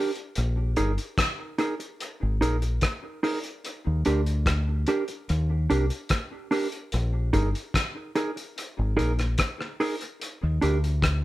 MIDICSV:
0, 0, Header, 1, 5, 480
1, 0, Start_track
1, 0, Key_signature, -3, "major"
1, 0, Tempo, 820232
1, 213, Time_signature, 4, 2, 24, 8
1, 6581, End_track
2, 0, Start_track
2, 0, Title_t, "Clean electric guitar"
2, 0, Program_c, 0, 27
2, 0, Note_on_c, 0, 67, 98
2, 0, Note_on_c, 0, 70, 91
2, 60, Note_off_c, 0, 67, 0
2, 61, Note_off_c, 0, 70, 0
2, 449, Note_on_c, 0, 63, 83
2, 451, Note_on_c, 0, 68, 87
2, 455, Note_on_c, 0, 70, 85
2, 538, Note_off_c, 0, 63, 0
2, 539, Note_off_c, 0, 68, 0
2, 541, Note_off_c, 0, 70, 0
2, 927, Note_on_c, 0, 63, 81
2, 932, Note_on_c, 0, 68, 87
2, 934, Note_on_c, 0, 70, 86
2, 1017, Note_off_c, 0, 63, 0
2, 1020, Note_off_c, 0, 68, 0
2, 1021, Note_off_c, 0, 70, 0
2, 1410, Note_on_c, 0, 63, 87
2, 1415, Note_on_c, 0, 68, 83
2, 1417, Note_on_c, 0, 70, 102
2, 1499, Note_off_c, 0, 63, 0
2, 1502, Note_off_c, 0, 68, 0
2, 1502, Note_off_c, 0, 70, 0
2, 1891, Note_on_c, 0, 63, 86
2, 1893, Note_on_c, 0, 68, 77
2, 1897, Note_on_c, 0, 70, 89
2, 1979, Note_off_c, 0, 63, 0
2, 1980, Note_off_c, 0, 68, 0
2, 1982, Note_off_c, 0, 70, 0
2, 2374, Note_on_c, 0, 62, 79
2, 2377, Note_on_c, 0, 67, 84
2, 2380, Note_on_c, 0, 70, 83
2, 2461, Note_off_c, 0, 62, 0
2, 2462, Note_off_c, 0, 67, 0
2, 2464, Note_off_c, 0, 70, 0
2, 2854, Note_on_c, 0, 62, 89
2, 2858, Note_on_c, 0, 67, 92
2, 2863, Note_on_c, 0, 70, 90
2, 2941, Note_off_c, 0, 62, 0
2, 2943, Note_off_c, 0, 67, 0
2, 2945, Note_off_c, 0, 70, 0
2, 3334, Note_on_c, 0, 62, 82
2, 3338, Note_on_c, 0, 67, 89
2, 3340, Note_on_c, 0, 70, 88
2, 3421, Note_off_c, 0, 62, 0
2, 3423, Note_off_c, 0, 67, 0
2, 3424, Note_off_c, 0, 70, 0
2, 3809, Note_on_c, 0, 62, 80
2, 3814, Note_on_c, 0, 67, 85
2, 3817, Note_on_c, 0, 70, 93
2, 3899, Note_off_c, 0, 62, 0
2, 3901, Note_off_c, 0, 67, 0
2, 3902, Note_off_c, 0, 70, 0
2, 4290, Note_on_c, 0, 63, 91
2, 4294, Note_on_c, 0, 68, 83
2, 4296, Note_on_c, 0, 70, 80
2, 4379, Note_off_c, 0, 63, 0
2, 4381, Note_off_c, 0, 68, 0
2, 4382, Note_off_c, 0, 70, 0
2, 4772, Note_on_c, 0, 63, 77
2, 4775, Note_on_c, 0, 68, 93
2, 4780, Note_on_c, 0, 70, 80
2, 4860, Note_off_c, 0, 63, 0
2, 4861, Note_off_c, 0, 68, 0
2, 4864, Note_off_c, 0, 70, 0
2, 5247, Note_on_c, 0, 63, 90
2, 5247, Note_on_c, 0, 68, 89
2, 5251, Note_on_c, 0, 70, 106
2, 5337, Note_off_c, 0, 63, 0
2, 5338, Note_off_c, 0, 68, 0
2, 5339, Note_off_c, 0, 70, 0
2, 5735, Note_on_c, 0, 63, 79
2, 5737, Note_on_c, 0, 68, 83
2, 5741, Note_on_c, 0, 70, 95
2, 5822, Note_off_c, 0, 63, 0
2, 5822, Note_off_c, 0, 68, 0
2, 5824, Note_off_c, 0, 70, 0
2, 6212, Note_on_c, 0, 62, 81
2, 6219, Note_on_c, 0, 67, 82
2, 6222, Note_on_c, 0, 70, 77
2, 6300, Note_off_c, 0, 62, 0
2, 6304, Note_off_c, 0, 67, 0
2, 6305, Note_off_c, 0, 70, 0
2, 6581, End_track
3, 0, Start_track
3, 0, Title_t, "Fingered electric bass"
3, 0, Program_c, 1, 33
3, 221, Note_on_c, 1, 34, 99
3, 434, Note_off_c, 1, 34, 0
3, 459, Note_on_c, 1, 31, 83
3, 567, Note_off_c, 1, 31, 0
3, 1304, Note_on_c, 1, 32, 89
3, 1406, Note_off_c, 1, 32, 0
3, 1416, Note_on_c, 1, 34, 86
3, 1631, Note_off_c, 1, 34, 0
3, 2264, Note_on_c, 1, 39, 92
3, 2366, Note_off_c, 1, 39, 0
3, 2382, Note_on_c, 1, 38, 92
3, 2834, Note_off_c, 1, 38, 0
3, 3101, Note_on_c, 1, 39, 108
3, 3314, Note_off_c, 1, 39, 0
3, 3342, Note_on_c, 1, 36, 87
3, 3449, Note_off_c, 1, 36, 0
3, 4059, Note_on_c, 1, 34, 98
3, 4273, Note_off_c, 1, 34, 0
3, 4296, Note_on_c, 1, 31, 88
3, 4406, Note_off_c, 1, 31, 0
3, 5144, Note_on_c, 1, 32, 87
3, 5246, Note_off_c, 1, 32, 0
3, 5261, Note_on_c, 1, 34, 84
3, 5474, Note_off_c, 1, 34, 0
3, 6105, Note_on_c, 1, 39, 89
3, 6207, Note_off_c, 1, 39, 0
3, 6222, Note_on_c, 1, 38, 93
3, 6581, Note_off_c, 1, 38, 0
3, 6581, End_track
4, 0, Start_track
4, 0, Title_t, "Muted clean electric guitar strokes"
4, 1051, Note_on_c, 9, 29, 58
4, 1110, Note_off_c, 9, 29, 0
4, 1535, Note_on_c, 9, 29, 52
4, 1594, Note_off_c, 9, 29, 0
4, 2976, Note_on_c, 9, 29, 59
4, 3035, Note_off_c, 9, 29, 0
4, 3454, Note_on_c, 9, 29, 43
4, 3512, Note_off_c, 9, 29, 0
4, 4893, Note_on_c, 9, 29, 50
4, 4952, Note_off_c, 9, 29, 0
4, 5376, Note_on_c, 9, 29, 56
4, 5434, Note_off_c, 9, 29, 0
4, 6581, End_track
5, 0, Start_track
5, 0, Title_t, "Drums"
5, 90, Note_on_c, 9, 42, 51
5, 148, Note_off_c, 9, 42, 0
5, 208, Note_on_c, 9, 42, 95
5, 266, Note_off_c, 9, 42, 0
5, 447, Note_on_c, 9, 42, 69
5, 506, Note_off_c, 9, 42, 0
5, 573, Note_on_c, 9, 42, 55
5, 632, Note_off_c, 9, 42, 0
5, 689, Note_on_c, 9, 36, 115
5, 692, Note_on_c, 9, 42, 87
5, 695, Note_on_c, 9, 37, 127
5, 747, Note_off_c, 9, 36, 0
5, 751, Note_off_c, 9, 42, 0
5, 753, Note_off_c, 9, 37, 0
5, 928, Note_on_c, 9, 42, 76
5, 986, Note_off_c, 9, 42, 0
5, 1053, Note_on_c, 9, 42, 52
5, 1112, Note_off_c, 9, 42, 0
5, 1173, Note_on_c, 9, 42, 83
5, 1232, Note_off_c, 9, 42, 0
5, 1418, Note_on_c, 9, 42, 69
5, 1476, Note_off_c, 9, 42, 0
5, 1534, Note_on_c, 9, 42, 55
5, 1592, Note_off_c, 9, 42, 0
5, 1646, Note_on_c, 9, 42, 99
5, 1652, Note_on_c, 9, 36, 99
5, 1656, Note_on_c, 9, 37, 107
5, 1705, Note_off_c, 9, 42, 0
5, 1711, Note_off_c, 9, 36, 0
5, 1715, Note_off_c, 9, 37, 0
5, 1895, Note_on_c, 9, 46, 75
5, 1953, Note_off_c, 9, 46, 0
5, 2010, Note_on_c, 9, 42, 54
5, 2069, Note_off_c, 9, 42, 0
5, 2134, Note_on_c, 9, 42, 86
5, 2192, Note_off_c, 9, 42, 0
5, 2370, Note_on_c, 9, 42, 79
5, 2428, Note_off_c, 9, 42, 0
5, 2495, Note_on_c, 9, 42, 59
5, 2554, Note_off_c, 9, 42, 0
5, 2610, Note_on_c, 9, 36, 112
5, 2613, Note_on_c, 9, 42, 97
5, 2616, Note_on_c, 9, 37, 116
5, 2668, Note_off_c, 9, 36, 0
5, 2672, Note_off_c, 9, 42, 0
5, 2674, Note_off_c, 9, 37, 0
5, 2848, Note_on_c, 9, 42, 80
5, 2906, Note_off_c, 9, 42, 0
5, 2972, Note_on_c, 9, 42, 56
5, 3030, Note_off_c, 9, 42, 0
5, 3096, Note_on_c, 9, 42, 76
5, 3155, Note_off_c, 9, 42, 0
5, 3339, Note_on_c, 9, 42, 72
5, 3397, Note_off_c, 9, 42, 0
5, 3454, Note_on_c, 9, 42, 57
5, 3512, Note_off_c, 9, 42, 0
5, 3565, Note_on_c, 9, 42, 101
5, 3572, Note_on_c, 9, 36, 115
5, 3575, Note_on_c, 9, 37, 113
5, 3624, Note_off_c, 9, 42, 0
5, 3630, Note_off_c, 9, 36, 0
5, 3634, Note_off_c, 9, 37, 0
5, 3813, Note_on_c, 9, 46, 74
5, 3872, Note_off_c, 9, 46, 0
5, 3933, Note_on_c, 9, 42, 54
5, 3991, Note_off_c, 9, 42, 0
5, 4050, Note_on_c, 9, 42, 83
5, 4109, Note_off_c, 9, 42, 0
5, 4293, Note_on_c, 9, 36, 76
5, 4293, Note_on_c, 9, 42, 69
5, 4351, Note_off_c, 9, 36, 0
5, 4351, Note_off_c, 9, 42, 0
5, 4419, Note_on_c, 9, 42, 55
5, 4478, Note_off_c, 9, 42, 0
5, 4531, Note_on_c, 9, 36, 109
5, 4536, Note_on_c, 9, 42, 92
5, 4538, Note_on_c, 9, 37, 127
5, 4589, Note_off_c, 9, 36, 0
5, 4594, Note_off_c, 9, 42, 0
5, 4597, Note_off_c, 9, 37, 0
5, 4772, Note_on_c, 9, 42, 69
5, 4831, Note_off_c, 9, 42, 0
5, 4899, Note_on_c, 9, 42, 57
5, 4957, Note_off_c, 9, 42, 0
5, 5020, Note_on_c, 9, 42, 84
5, 5078, Note_off_c, 9, 42, 0
5, 5260, Note_on_c, 9, 42, 70
5, 5319, Note_off_c, 9, 42, 0
5, 5377, Note_on_c, 9, 42, 53
5, 5381, Note_on_c, 9, 37, 67
5, 5435, Note_off_c, 9, 42, 0
5, 5439, Note_off_c, 9, 37, 0
5, 5488, Note_on_c, 9, 42, 106
5, 5493, Note_on_c, 9, 36, 113
5, 5498, Note_on_c, 9, 37, 119
5, 5546, Note_off_c, 9, 42, 0
5, 5552, Note_off_c, 9, 36, 0
5, 5557, Note_off_c, 9, 37, 0
5, 5621, Note_on_c, 9, 37, 66
5, 5680, Note_off_c, 9, 37, 0
5, 5737, Note_on_c, 9, 46, 75
5, 5796, Note_off_c, 9, 46, 0
5, 5857, Note_on_c, 9, 42, 55
5, 5915, Note_off_c, 9, 42, 0
5, 5978, Note_on_c, 9, 42, 90
5, 6036, Note_off_c, 9, 42, 0
5, 6216, Note_on_c, 9, 42, 77
5, 6275, Note_off_c, 9, 42, 0
5, 6343, Note_on_c, 9, 42, 55
5, 6401, Note_off_c, 9, 42, 0
5, 6451, Note_on_c, 9, 36, 114
5, 6456, Note_on_c, 9, 42, 85
5, 6459, Note_on_c, 9, 37, 127
5, 6510, Note_off_c, 9, 36, 0
5, 6515, Note_off_c, 9, 42, 0
5, 6517, Note_off_c, 9, 37, 0
5, 6581, End_track
0, 0, End_of_file